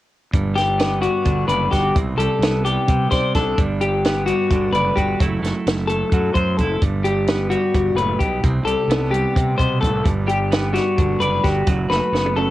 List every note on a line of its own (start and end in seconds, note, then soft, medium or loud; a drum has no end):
0.33 1.06 G1 medium
0.33 1.95 G2 medium
0.33 kick loud
0.33 closed hi-hat medium
0.56 1.01 G3 soft
0.56 1.01 G4 medium
0.56 snare soft
0.56 closed hi-hat medium
0.79 2.43 B3 medium
0.79 snare loud
0.79 closed hi-hat medium
1.02 2.19 G3 soft
1.02 1.47 F#4 medium
1.02 closed hi-hat medium
1.25 1.44 G1 medium
1.25 1.95 D3 medium
1.25 kick medium
1.25 closed hi-hat medium
1.48 1.67 F#1 medium
1.48 1.71 B4 medium
1.48 1.99 D5 medium
1.48 closed hi-hat medium
1.71 1.91 G1 medium
1.71 1.93 F#4 soft
1.71 1.95 G4 medium
1.71 kick medium
1.71 snare soft
1.71 closed hi-hat medium
1.95 2.14 C2 medium
1.95 3.55 C3 medium
1.95 kick loud
1.95 closed hi-hat medium
2.17 2.27 C2 medium
2.17 2.66 G3 medium
2.17 2.64 A4 medium
2.17 closed hi-hat medium
2.39 2.76 C2 medium
2.39 closed hi-hat medium
2.43 4.05 B3 medium
2.43 snare medium
2.65 2.88 G3 medium
2.65 3.10 G4 medium
2.65 closed hi-hat medium
2.87 3.06 C3 medium
2.87 3.55 G3 medium
2.87 kick medium
2.87 closed hi-hat medium
3.11 3.36 C3 medium
3.11 3.34 C5 medium
3.11 4.75 D5 medium
3.11 kick medium
3.11 snare soft
3.11 closed hi-hat medium
3.34 3.53 C2 medium
3.34 4.98 D4 medium
3.34 3.58 A4 medium
3.34 kick medium
3.34 snare soft
3.34 closed hi-hat medium
3.58 4.30 G1 medium
3.58 5.20 G2 medium
3.58 kick loud
3.58 closed hi-hat medium
3.81 4.28 G3 medium
3.81 4.26 G4 medium
3.81 closed hi-hat medium
4.04 5.24 B3 medium
4.04 snare medium
4.04 closed hi-hat medium
4.26 5.20 G3 medium
4.26 4.73 F#4 medium
4.26 closed hi-hat soft
4.50 4.68 G1 medium
4.50 5.19 D3 medium
4.50 kick medium
4.50 closed hi-hat medium
4.72 4.91 F#1 medium
4.72 4.96 B4 medium
4.72 5.25 D5 medium
4.72 closed hi-hat medium
4.96 5.14 G1 medium
4.96 5.22 F#4 medium
4.96 5.19 G4 medium
4.96 kick medium
4.96 closed hi-hat medium
5.20 5.38 F#1 medium
5.20 6.12 F#3 medium
5.20 5.42 A3 medium
5.20 6.59 E4 medium
5.20 kick loud
5.20 closed hi-hat medium
5.42 5.51 F#1 medium
5.42 5.88 A3 medium
5.42 snare soft
5.42 closed hi-hat medium
5.66 6.02 F#1 medium
5.66 snare loud
5.66 closed hi-hat medium
5.88 6.79 A3 soft
5.88 6.34 A4 medium
5.88 closed hi-hat medium
6.12 6.30 F#2 medium
6.12 6.79 F#3 medium
6.12 kick loud
6.12 closed hi-hat medium
6.34 6.60 F#2 medium
6.34 6.57 C5 medium
6.34 6.79 C5 medium
6.34 kick medium
6.34 closed hi-hat medium
6.57 6.77 F#1 medium
6.57 6.80 E4 medium
6.57 6.81 A4 medium
6.57 kick medium
6.57 closed hi-hat medium
6.82 7.54 G1 medium
6.82 7.73 G2 medium
6.82 kick loud
6.82 closed hi-hat medium
7.04 7.50 G3 medium
7.04 7.50 G4 medium
7.04 closed hi-hat medium
7.27 8.89 B3 medium
7.27 snare loud
7.27 closed hi-hat medium
7.50 8.66 G3 medium
7.50 7.97 F#4 medium
7.50 closed hi-hat soft
7.74 7.92 G1 medium
7.74 7.97 G2 medium
7.74 kick medium
7.74 closed hi-hat medium
7.95 8.14 F#1 medium
7.95 8.20 A2 medium
7.95 8.20 B4 medium
7.95 closed hi-hat medium
8.19 8.38 B1 medium
8.19 8.43 B2 medium
8.19 8.43 G4 medium
8.19 kick medium
8.19 closed hi-hat medium
8.43 8.61 C2 medium
8.43 9.34 C3 medium
8.43 kick loud
8.43 closed hi-hat medium
8.64 8.74 C2 medium
8.64 9.12 G3 medium
8.64 9.12 A4 medium
8.64 closed hi-hat medium
8.87 9.25 C2 medium
8.87 10.51 B3 medium
8.87 closed hi-hat medium
8.92 snare loud
9.11 10.26 G3 medium
9.11 9.58 G4 medium
9.11 closed hi-hat medium
9.35 9.58 C3 medium
9.35 9.54 C3 medium
9.35 kick medium
9.35 closed hi-hat medium
9.58 9.81 B2 medium
9.58 9.84 C3 medium
9.58 9.80 C5 medium
9.58 kick medium
9.58 closed hi-hat medium
9.81 10.01 C2 medium
9.81 10.04 A2 medium
9.81 10.05 A4 medium
9.81 kick medium
9.81 closed hi-hat medium
10.04 10.78 G1 medium
10.04 11.67 G2 medium
10.04 kick loud
10.04 closed hi-hat medium
10.27 10.73 G3 medium
10.27 10.73 G4 medium
10.27 closed hi-hat medium
10.52 12.12 B3 medium
10.52 snare loud
10.52 closed hi-hat medium
10.74 11.67 G3 medium
10.74 11.21 F#4 medium
10.74 snare soft
10.74 closed hi-hat medium
10.98 11.16 G1 medium
10.98 11.67 D3 medium
10.98 kick medium
10.98 closed hi-hat medium
11.20 11.39 F#1 medium
11.20 11.44 B4 medium
11.20 12.50 D5 medium
11.20 closed hi-hat medium
11.44 11.62 G1 medium
11.44 12.50 F#4 medium
11.44 11.67 G4 medium
11.44 kick medium
11.44 snare soft
11.44 closed hi-hat soft
11.67 11.85 F#1 medium
11.67 12.50 F#3 medium
11.67 kick loud
11.67 closed hi-hat medium
11.90 11.99 F#1 medium
11.90 12.35 A3 medium
11.90 12.36 B4 medium
11.90 snare medium
12.12 12.49 F#1 medium
12.12 12.50 B3 medium
12.12 snare medium
12.26 high tom soft
12.36 12.50 A3 medium
12.36 12.50 A4 medium
12.36 high tom medium